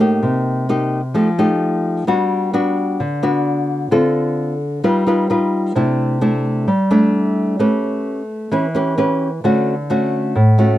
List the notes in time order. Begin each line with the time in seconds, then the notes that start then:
Already playing: A2
0.00 A#3 D#4 G4
0.23 C3
0.69 A#3 D#4 G4
1.14 F3 A3 D#4 G4
1.38 A3 D#4 G4
2.07 G3 B3 D4 F#4
2.54 B3 D4 F#4
3.00 D3
3.23 B3 D4 F#4
3.91 D3 C4 F4 A4
4.84 G3 D#4 F4 B4
5.07 D#4 F4 B4
5.30 D#4 F4 B4
5.75 C3 A3 D4 E4
6.21 A3 D4 E4
6.68 G3
6.91 A3 D4 E4
7.59 A3 C#4 G4 B4
8.52 E3 C#4 G4 B4
8.75 C#4 G4 B4
8.98 C#4 G4 B4
9.44 D3 A3 C#4 F#4
9.90 A3 C#4 F#4
10.35 A2
10.58 A3 C#4 F#4